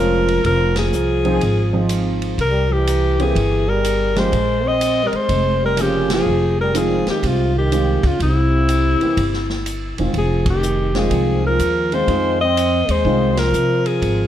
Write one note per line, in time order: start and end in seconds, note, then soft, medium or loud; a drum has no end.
0.00 0.41 F1 medium
0.00 0.45 F3 medium
0.00 0.41 G#3 medium
0.00 0.42 C#4 medium
0.00 0.42 F4 medium
0.00 0.42 A#4 medium
0.00 0.45 A#4 medium
0.28 ride soft
0.44 0.90 F1 medium
0.44 0.75 F3 medium
0.44 0.75 A#4 loud
0.44 kick soft
0.44 ride medium
0.76 2.18 F3 medium
0.76 2.19 G#4 medium
0.76 snare medium
0.76 ride medium
0.93 1.39 C2 medium
0.93 hi-hat pedal medium
1.25 1.40 F3 medium
1.25 1.40 C4 medium
1.25 1.40 D#4 medium
1.25 1.41 G#4 medium
1.25 ride soft
1.41 2.34 G#1 medium
1.41 kick soft
1.41 ride medium
1.73 2.35 F3 medium
1.73 2.36 C4 medium
1.73 2.36 D#4 medium
1.73 2.36 F4 medium
1.89 hi-hat pedal medium
1.89 ride medium
2.22 ride soft
2.38 3.31 C2 medium
2.38 2.74 G3 medium
2.38 2.74 A#4 medium
2.38 kick soft
2.38 ride medium
2.73 3.21 E3 medium
2.73 3.24 G4 medium
2.87 hi-hat pedal medium
2.87 ride medium
3.19 3.34 E3 medium
3.19 3.70 E3 medium
3.19 3.34 A#3 medium
3.19 3.35 C4 medium
3.19 3.35 G4 medium
3.19 3.71 G#4 medium
3.19 ride soft
3.35 4.29 G1 medium
3.35 kick soft
3.35 ride medium
3.68 4.19 G3 medium
3.68 4.20 A#4 medium
3.84 hi-hat pedal medium
3.84 ride medium
4.16 4.31 F3 medium
4.16 4.66 G#3 medium
4.16 4.31 A#3 medium
4.16 4.31 C#4 medium
4.16 4.31 G4 medium
4.16 4.69 C5 medium
4.16 snare soft
4.16 ride soft
4.32 5.09 A#1 medium
4.32 kick soft
4.32 ride medium
4.65 5.05 C4 medium
4.65 5.09 D#5 loud
4.81 hi-hat pedal medium
4.81 ride medium
5.03 5.16 G3 medium
5.03 5.17 A#4 medium
5.13 5.61 G#3 medium
5.13 5.63 C5 medium
5.13 muted upright bass stroke soft
5.13 ride soft
5.29 6.22 F1 medium
5.29 kick soft
5.29 ride medium
5.61 5.82 G3 medium
5.61 5.83 A#4 medium
5.76 6.11 C#3 medium
5.76 6.26 F3 medium
5.76 6.26 A#3 medium
5.76 6.26 C#4 soft
5.76 6.27 G#4 medium
5.76 hi-hat pedal medium
5.76 ride medium
5.81 6.12 G4 loud
6.10 6.57 F3 medium
6.10 snare medium
6.10 ride medium
6.14 6.57 G#4 medium
6.26 7.03 F1 medium
6.60 6.76 G3 medium
6.60 6.80 A#4 medium
6.74 7.49 D#3 medium
6.74 7.07 F3 medium
6.74 7.49 G#3 medium
6.74 7.49 C4 medium
6.74 7.49 F4 medium
6.74 hi-hat pedal medium
6.74 ride medium
6.78 7.09 G#4 medium
7.06 7.26 D#3 medium
7.06 7.28 G4 medium
7.06 muted upright bass stroke soft
7.06 snare soft
7.06 ride soft
7.23 8.00 C2 medium
7.23 7.55 C3 medium
7.23 kick soft
7.23 ride medium
7.27 7.57 F4 medium
7.56 8.07 D#3 medium
7.56 8.08 G4 medium
7.72 8.01 D#3 medium
7.72 8.01 G#3 medium
7.72 8.01 C4 soft
7.72 8.02 F4 medium
7.72 hi-hat pedal soft
7.72 ride medium
8.03 8.19 C#2 medium
8.03 8.21 C#3 medium
8.03 8.22 F4 medium
8.03 kick medium
8.03 ride soft
8.20 8.97 C2 medium
8.20 9.63 C3 medium
8.20 9.63 E4 medium
8.20 kick soft
8.20 ride medium
8.69 hi-hat pedal medium
8.69 ride medium
9.01 9.16 E3 medium
9.01 9.16 A#3 medium
9.01 9.17 C4 medium
9.01 9.17 G4 medium
9.01 muted upright bass stroke soft
9.01 ride soft
9.17 9.94 G1 medium
9.17 kick soft
9.17 ride medium
9.34 snare soft
9.50 snare soft
9.66 hi-hat pedal medium
9.66 ride medium
9.98 10.13 E1 medium
9.98 10.13 D#3 medium
9.98 10.14 G#3 medium
9.98 10.14 C4 soft
9.98 10.14 F4 medium
9.98 ride soft
10.14 11.07 F1 medium
10.14 10.46 F3 medium
10.14 kick soft
10.14 ride medium
10.18 10.46 G#4 medium
10.46 10.97 D#3 medium
10.46 kick medium
10.46 ride medium
10.50 11.00 G4 medium
10.63 hi-hat pedal medium
10.94 11.57 D#3 medium
10.94 11.44 F3 medium
10.94 11.57 G#3 medium
10.94 11.57 C4 medium
10.94 11.57 F4 medium
10.94 11.45 G#4 medium
10.94 snare soft
10.94 ride soft
11.10 11.56 C2 medium
11.10 kick soft
11.10 ride medium
11.46 11.96 F3 medium
11.46 11.95 A#4 medium
11.59 12.05 D#2 medium
11.59 hi-hat pedal medium
11.59 ride medium
11.92 12.06 D#3 medium
11.92 12.07 G#3 medium
11.92 12.41 G#3 medium
11.92 12.08 C4 medium
11.92 12.08 F4 medium
11.92 12.40 C5 medium
11.92 ride soft
12.08 12.85 F2 medium
12.08 12.37 D#3 medium
12.08 12.38 G#3 medium
12.08 12.38 C4 medium
12.08 12.38 F4 medium
12.08 kick soft
12.08 ride medium
12.41 12.90 C4 medium
12.41 12.93 D#5 loud
12.57 hi-hat pedal medium
12.57 ride medium
12.88 13.04 D#2 medium
12.88 13.40 G#3 medium
12.88 13.40 C5 medium
12.88 ride medium
13.05 13.50 C2 medium
13.05 13.34 D#3 medium
13.05 13.34 G#3 medium
13.05 13.35 C4 medium
13.05 13.35 F4 medium
13.05 kick soft
13.37 13.87 F3 medium
13.37 13.88 A#4 medium
13.37 snare medium
13.37 ride medium
13.53 13.99 C3 medium
13.53 hi-hat pedal medium
13.86 14.27 F3 medium
13.86 14.27 G#4 medium
13.86 ride soft
14.02 14.27 G#1 medium
14.02 kick soft
14.02 ride medium